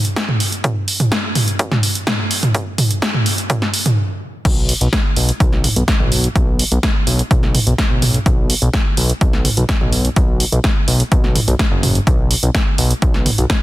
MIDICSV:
0, 0, Header, 1, 3, 480
1, 0, Start_track
1, 0, Tempo, 476190
1, 646, Time_signature, 4, 2, 24, 8
1, 13735, End_track
2, 0, Start_track
2, 0, Title_t, "Analog synth bass"
2, 0, Program_c, 0, 38
2, 4486, Note_on_c, 0, 35, 99
2, 4772, Note_off_c, 0, 35, 0
2, 4848, Note_on_c, 0, 35, 85
2, 4920, Note_off_c, 0, 35, 0
2, 5206, Note_on_c, 0, 35, 95
2, 5355, Note_off_c, 0, 35, 0
2, 5446, Note_on_c, 0, 35, 90
2, 5732, Note_off_c, 0, 35, 0
2, 5808, Note_on_c, 0, 35, 80
2, 5880, Note_off_c, 0, 35, 0
2, 6048, Note_on_c, 0, 35, 83
2, 6333, Note_off_c, 0, 35, 0
2, 6406, Note_on_c, 0, 35, 95
2, 6692, Note_off_c, 0, 35, 0
2, 6769, Note_on_c, 0, 35, 84
2, 6840, Note_off_c, 0, 35, 0
2, 7126, Note_on_c, 0, 35, 94
2, 7275, Note_off_c, 0, 35, 0
2, 7366, Note_on_c, 0, 35, 88
2, 7652, Note_off_c, 0, 35, 0
2, 7728, Note_on_c, 0, 35, 80
2, 7800, Note_off_c, 0, 35, 0
2, 7968, Note_on_c, 0, 35, 89
2, 8253, Note_off_c, 0, 35, 0
2, 8326, Note_on_c, 0, 35, 99
2, 8612, Note_off_c, 0, 35, 0
2, 8688, Note_on_c, 0, 35, 83
2, 8760, Note_off_c, 0, 35, 0
2, 9045, Note_on_c, 0, 35, 95
2, 9194, Note_off_c, 0, 35, 0
2, 9286, Note_on_c, 0, 35, 90
2, 9572, Note_off_c, 0, 35, 0
2, 9648, Note_on_c, 0, 35, 81
2, 9720, Note_off_c, 0, 35, 0
2, 9888, Note_on_c, 0, 35, 88
2, 10172, Note_off_c, 0, 35, 0
2, 10246, Note_on_c, 0, 35, 98
2, 10532, Note_off_c, 0, 35, 0
2, 10607, Note_on_c, 0, 35, 84
2, 10680, Note_off_c, 0, 35, 0
2, 10965, Note_on_c, 0, 35, 96
2, 11114, Note_off_c, 0, 35, 0
2, 11206, Note_on_c, 0, 35, 90
2, 11492, Note_off_c, 0, 35, 0
2, 11568, Note_on_c, 0, 35, 81
2, 11640, Note_off_c, 0, 35, 0
2, 11808, Note_on_c, 0, 30, 96
2, 12093, Note_off_c, 0, 30, 0
2, 12166, Note_on_c, 0, 35, 94
2, 12452, Note_off_c, 0, 35, 0
2, 12528, Note_on_c, 0, 35, 85
2, 12600, Note_off_c, 0, 35, 0
2, 12885, Note_on_c, 0, 35, 96
2, 13034, Note_off_c, 0, 35, 0
2, 13126, Note_on_c, 0, 35, 90
2, 13413, Note_off_c, 0, 35, 0
2, 13489, Note_on_c, 0, 35, 80
2, 13560, Note_off_c, 0, 35, 0
2, 13735, End_track
3, 0, Start_track
3, 0, Title_t, "Drums"
3, 49, Note_on_c, 9, 42, 53
3, 150, Note_off_c, 9, 42, 0
3, 166, Note_on_c, 9, 36, 114
3, 166, Note_on_c, 9, 38, 109
3, 166, Note_on_c, 9, 42, 54
3, 266, Note_off_c, 9, 38, 0
3, 266, Note_off_c, 9, 42, 0
3, 267, Note_off_c, 9, 36, 0
3, 288, Note_on_c, 9, 45, 95
3, 389, Note_off_c, 9, 45, 0
3, 405, Note_on_c, 9, 46, 100
3, 506, Note_off_c, 9, 46, 0
3, 529, Note_on_c, 9, 42, 54
3, 629, Note_off_c, 9, 42, 0
3, 646, Note_on_c, 9, 36, 115
3, 646, Note_on_c, 9, 42, 54
3, 646, Note_on_c, 9, 45, 93
3, 747, Note_off_c, 9, 36, 0
3, 747, Note_off_c, 9, 42, 0
3, 747, Note_off_c, 9, 45, 0
3, 885, Note_on_c, 9, 46, 100
3, 986, Note_off_c, 9, 46, 0
3, 1009, Note_on_c, 9, 42, 55
3, 1009, Note_on_c, 9, 45, 91
3, 1109, Note_off_c, 9, 42, 0
3, 1109, Note_off_c, 9, 45, 0
3, 1126, Note_on_c, 9, 36, 108
3, 1126, Note_on_c, 9, 38, 112
3, 1126, Note_on_c, 9, 42, 57
3, 1227, Note_off_c, 9, 36, 0
3, 1227, Note_off_c, 9, 38, 0
3, 1227, Note_off_c, 9, 42, 0
3, 1365, Note_on_c, 9, 45, 92
3, 1365, Note_on_c, 9, 46, 102
3, 1466, Note_off_c, 9, 45, 0
3, 1466, Note_off_c, 9, 46, 0
3, 1489, Note_on_c, 9, 42, 59
3, 1590, Note_off_c, 9, 42, 0
3, 1606, Note_on_c, 9, 36, 114
3, 1606, Note_on_c, 9, 42, 59
3, 1707, Note_off_c, 9, 36, 0
3, 1707, Note_off_c, 9, 42, 0
3, 1729, Note_on_c, 9, 38, 36
3, 1729, Note_on_c, 9, 45, 92
3, 1830, Note_off_c, 9, 38, 0
3, 1830, Note_off_c, 9, 45, 0
3, 1846, Note_on_c, 9, 46, 100
3, 1946, Note_off_c, 9, 46, 0
3, 1969, Note_on_c, 9, 42, 57
3, 2070, Note_off_c, 9, 42, 0
3, 2086, Note_on_c, 9, 36, 111
3, 2086, Note_on_c, 9, 38, 116
3, 2086, Note_on_c, 9, 42, 57
3, 2086, Note_on_c, 9, 45, 98
3, 2187, Note_off_c, 9, 36, 0
3, 2187, Note_off_c, 9, 38, 0
3, 2187, Note_off_c, 9, 42, 0
3, 2187, Note_off_c, 9, 45, 0
3, 2326, Note_on_c, 9, 46, 102
3, 2427, Note_off_c, 9, 46, 0
3, 2449, Note_on_c, 9, 42, 57
3, 2449, Note_on_c, 9, 45, 94
3, 2550, Note_off_c, 9, 42, 0
3, 2550, Note_off_c, 9, 45, 0
3, 2566, Note_on_c, 9, 36, 117
3, 2566, Note_on_c, 9, 42, 58
3, 2667, Note_off_c, 9, 36, 0
3, 2667, Note_off_c, 9, 42, 0
3, 2805, Note_on_c, 9, 45, 92
3, 2805, Note_on_c, 9, 46, 105
3, 2906, Note_off_c, 9, 45, 0
3, 2906, Note_off_c, 9, 46, 0
3, 2929, Note_on_c, 9, 42, 58
3, 3030, Note_off_c, 9, 42, 0
3, 3046, Note_on_c, 9, 36, 114
3, 3046, Note_on_c, 9, 38, 119
3, 3046, Note_on_c, 9, 42, 60
3, 3146, Note_off_c, 9, 36, 0
3, 3147, Note_off_c, 9, 38, 0
3, 3147, Note_off_c, 9, 42, 0
3, 3169, Note_on_c, 9, 45, 94
3, 3270, Note_off_c, 9, 45, 0
3, 3286, Note_on_c, 9, 46, 103
3, 3387, Note_off_c, 9, 46, 0
3, 3409, Note_on_c, 9, 42, 58
3, 3509, Note_off_c, 9, 42, 0
3, 3526, Note_on_c, 9, 36, 116
3, 3526, Note_on_c, 9, 42, 60
3, 3526, Note_on_c, 9, 45, 90
3, 3626, Note_off_c, 9, 36, 0
3, 3626, Note_off_c, 9, 42, 0
3, 3626, Note_off_c, 9, 45, 0
3, 3649, Note_on_c, 9, 38, 38
3, 3750, Note_off_c, 9, 38, 0
3, 3766, Note_on_c, 9, 46, 101
3, 3867, Note_off_c, 9, 46, 0
3, 3889, Note_on_c, 9, 42, 59
3, 3889, Note_on_c, 9, 45, 94
3, 3990, Note_off_c, 9, 42, 0
3, 3990, Note_off_c, 9, 45, 0
3, 4486, Note_on_c, 9, 36, 116
3, 4487, Note_on_c, 9, 42, 59
3, 4487, Note_on_c, 9, 49, 100
3, 4587, Note_off_c, 9, 36, 0
3, 4587, Note_off_c, 9, 42, 0
3, 4587, Note_off_c, 9, 49, 0
3, 4726, Note_on_c, 9, 46, 106
3, 4827, Note_off_c, 9, 46, 0
3, 4850, Note_on_c, 9, 42, 57
3, 4951, Note_off_c, 9, 42, 0
3, 4966, Note_on_c, 9, 36, 116
3, 4967, Note_on_c, 9, 38, 121
3, 4967, Note_on_c, 9, 42, 58
3, 5067, Note_off_c, 9, 36, 0
3, 5068, Note_off_c, 9, 38, 0
3, 5068, Note_off_c, 9, 42, 0
3, 5206, Note_on_c, 9, 46, 101
3, 5307, Note_off_c, 9, 46, 0
3, 5329, Note_on_c, 9, 42, 59
3, 5430, Note_off_c, 9, 42, 0
3, 5446, Note_on_c, 9, 36, 125
3, 5447, Note_on_c, 9, 42, 60
3, 5547, Note_off_c, 9, 36, 0
3, 5548, Note_off_c, 9, 42, 0
3, 5570, Note_on_c, 9, 38, 37
3, 5670, Note_off_c, 9, 38, 0
3, 5686, Note_on_c, 9, 45, 75
3, 5686, Note_on_c, 9, 46, 109
3, 5787, Note_off_c, 9, 45, 0
3, 5787, Note_off_c, 9, 46, 0
3, 5809, Note_on_c, 9, 42, 60
3, 5910, Note_off_c, 9, 42, 0
3, 5926, Note_on_c, 9, 36, 120
3, 5926, Note_on_c, 9, 38, 123
3, 5926, Note_on_c, 9, 42, 60
3, 6027, Note_off_c, 9, 36, 0
3, 6027, Note_off_c, 9, 38, 0
3, 6027, Note_off_c, 9, 42, 0
3, 6050, Note_on_c, 9, 45, 91
3, 6151, Note_off_c, 9, 45, 0
3, 6167, Note_on_c, 9, 46, 105
3, 6267, Note_off_c, 9, 46, 0
3, 6290, Note_on_c, 9, 42, 60
3, 6390, Note_off_c, 9, 42, 0
3, 6406, Note_on_c, 9, 36, 123
3, 6407, Note_on_c, 9, 42, 57
3, 6507, Note_off_c, 9, 36, 0
3, 6508, Note_off_c, 9, 42, 0
3, 6647, Note_on_c, 9, 46, 112
3, 6747, Note_off_c, 9, 46, 0
3, 6770, Note_on_c, 9, 42, 56
3, 6870, Note_off_c, 9, 42, 0
3, 6886, Note_on_c, 9, 36, 122
3, 6887, Note_on_c, 9, 38, 127
3, 6887, Note_on_c, 9, 42, 56
3, 6987, Note_off_c, 9, 36, 0
3, 6987, Note_off_c, 9, 38, 0
3, 6987, Note_off_c, 9, 42, 0
3, 7127, Note_on_c, 9, 46, 113
3, 7228, Note_off_c, 9, 46, 0
3, 7250, Note_on_c, 9, 42, 56
3, 7351, Note_off_c, 9, 42, 0
3, 7367, Note_on_c, 9, 36, 126
3, 7367, Note_on_c, 9, 42, 56
3, 7467, Note_off_c, 9, 36, 0
3, 7467, Note_off_c, 9, 42, 0
3, 7489, Note_on_c, 9, 38, 39
3, 7590, Note_off_c, 9, 38, 0
3, 7606, Note_on_c, 9, 45, 76
3, 7606, Note_on_c, 9, 46, 110
3, 7707, Note_off_c, 9, 45, 0
3, 7707, Note_off_c, 9, 46, 0
3, 7729, Note_on_c, 9, 42, 59
3, 7830, Note_off_c, 9, 42, 0
3, 7846, Note_on_c, 9, 36, 122
3, 7847, Note_on_c, 9, 38, 127
3, 7847, Note_on_c, 9, 42, 59
3, 7947, Note_off_c, 9, 36, 0
3, 7947, Note_off_c, 9, 38, 0
3, 7947, Note_off_c, 9, 42, 0
3, 8086, Note_on_c, 9, 45, 90
3, 8086, Note_on_c, 9, 46, 108
3, 8187, Note_off_c, 9, 45, 0
3, 8187, Note_off_c, 9, 46, 0
3, 8209, Note_on_c, 9, 42, 59
3, 8310, Note_off_c, 9, 42, 0
3, 8326, Note_on_c, 9, 36, 127
3, 8326, Note_on_c, 9, 42, 55
3, 8427, Note_off_c, 9, 36, 0
3, 8427, Note_off_c, 9, 42, 0
3, 8565, Note_on_c, 9, 46, 116
3, 8666, Note_off_c, 9, 46, 0
3, 8688, Note_on_c, 9, 42, 52
3, 8789, Note_off_c, 9, 42, 0
3, 8805, Note_on_c, 9, 38, 120
3, 8805, Note_on_c, 9, 42, 55
3, 8806, Note_on_c, 9, 36, 124
3, 8906, Note_off_c, 9, 38, 0
3, 8906, Note_off_c, 9, 42, 0
3, 8907, Note_off_c, 9, 36, 0
3, 9044, Note_on_c, 9, 46, 112
3, 9145, Note_off_c, 9, 46, 0
3, 9168, Note_on_c, 9, 42, 56
3, 9269, Note_off_c, 9, 42, 0
3, 9285, Note_on_c, 9, 42, 54
3, 9286, Note_on_c, 9, 36, 127
3, 9386, Note_off_c, 9, 42, 0
3, 9387, Note_off_c, 9, 36, 0
3, 9408, Note_on_c, 9, 38, 37
3, 9509, Note_off_c, 9, 38, 0
3, 9525, Note_on_c, 9, 45, 79
3, 9525, Note_on_c, 9, 46, 110
3, 9625, Note_off_c, 9, 45, 0
3, 9625, Note_off_c, 9, 46, 0
3, 9648, Note_on_c, 9, 42, 55
3, 9749, Note_off_c, 9, 42, 0
3, 9765, Note_on_c, 9, 38, 120
3, 9765, Note_on_c, 9, 42, 54
3, 9766, Note_on_c, 9, 36, 126
3, 9866, Note_off_c, 9, 38, 0
3, 9866, Note_off_c, 9, 42, 0
3, 9867, Note_off_c, 9, 36, 0
3, 9888, Note_on_c, 9, 45, 90
3, 9989, Note_off_c, 9, 45, 0
3, 10004, Note_on_c, 9, 46, 110
3, 10105, Note_off_c, 9, 46, 0
3, 10128, Note_on_c, 9, 42, 54
3, 10228, Note_off_c, 9, 42, 0
3, 10245, Note_on_c, 9, 42, 52
3, 10246, Note_on_c, 9, 36, 126
3, 10346, Note_off_c, 9, 42, 0
3, 10347, Note_off_c, 9, 36, 0
3, 10485, Note_on_c, 9, 46, 113
3, 10585, Note_off_c, 9, 46, 0
3, 10608, Note_on_c, 9, 42, 51
3, 10709, Note_off_c, 9, 42, 0
3, 10725, Note_on_c, 9, 38, 113
3, 10725, Note_on_c, 9, 42, 53
3, 10726, Note_on_c, 9, 36, 119
3, 10825, Note_off_c, 9, 38, 0
3, 10825, Note_off_c, 9, 42, 0
3, 10827, Note_off_c, 9, 36, 0
3, 10965, Note_on_c, 9, 46, 105
3, 11065, Note_off_c, 9, 46, 0
3, 11088, Note_on_c, 9, 42, 54
3, 11188, Note_off_c, 9, 42, 0
3, 11205, Note_on_c, 9, 42, 54
3, 11206, Note_on_c, 9, 36, 126
3, 11306, Note_off_c, 9, 42, 0
3, 11307, Note_off_c, 9, 36, 0
3, 11329, Note_on_c, 9, 38, 38
3, 11430, Note_off_c, 9, 38, 0
3, 11446, Note_on_c, 9, 45, 80
3, 11446, Note_on_c, 9, 46, 109
3, 11547, Note_off_c, 9, 45, 0
3, 11547, Note_off_c, 9, 46, 0
3, 11570, Note_on_c, 9, 42, 55
3, 11670, Note_off_c, 9, 42, 0
3, 11686, Note_on_c, 9, 36, 122
3, 11686, Note_on_c, 9, 38, 120
3, 11686, Note_on_c, 9, 42, 54
3, 11787, Note_off_c, 9, 36, 0
3, 11787, Note_off_c, 9, 38, 0
3, 11787, Note_off_c, 9, 42, 0
3, 11926, Note_on_c, 9, 45, 98
3, 11926, Note_on_c, 9, 46, 109
3, 12027, Note_off_c, 9, 45, 0
3, 12027, Note_off_c, 9, 46, 0
3, 12049, Note_on_c, 9, 42, 54
3, 12150, Note_off_c, 9, 42, 0
3, 12166, Note_on_c, 9, 36, 121
3, 12167, Note_on_c, 9, 42, 54
3, 12267, Note_off_c, 9, 36, 0
3, 12267, Note_off_c, 9, 42, 0
3, 12405, Note_on_c, 9, 46, 108
3, 12506, Note_off_c, 9, 46, 0
3, 12529, Note_on_c, 9, 42, 54
3, 12630, Note_off_c, 9, 42, 0
3, 12646, Note_on_c, 9, 36, 112
3, 12646, Note_on_c, 9, 38, 115
3, 12646, Note_on_c, 9, 42, 53
3, 12747, Note_off_c, 9, 36, 0
3, 12747, Note_off_c, 9, 38, 0
3, 12747, Note_off_c, 9, 42, 0
3, 12885, Note_on_c, 9, 46, 108
3, 12986, Note_off_c, 9, 46, 0
3, 13009, Note_on_c, 9, 42, 54
3, 13110, Note_off_c, 9, 42, 0
3, 13125, Note_on_c, 9, 42, 54
3, 13126, Note_on_c, 9, 36, 125
3, 13226, Note_off_c, 9, 42, 0
3, 13227, Note_off_c, 9, 36, 0
3, 13248, Note_on_c, 9, 38, 36
3, 13349, Note_off_c, 9, 38, 0
3, 13365, Note_on_c, 9, 45, 84
3, 13365, Note_on_c, 9, 46, 106
3, 13466, Note_off_c, 9, 45, 0
3, 13466, Note_off_c, 9, 46, 0
3, 13489, Note_on_c, 9, 42, 54
3, 13590, Note_off_c, 9, 42, 0
3, 13605, Note_on_c, 9, 38, 114
3, 13605, Note_on_c, 9, 42, 55
3, 13607, Note_on_c, 9, 36, 116
3, 13706, Note_off_c, 9, 38, 0
3, 13706, Note_off_c, 9, 42, 0
3, 13707, Note_off_c, 9, 36, 0
3, 13735, End_track
0, 0, End_of_file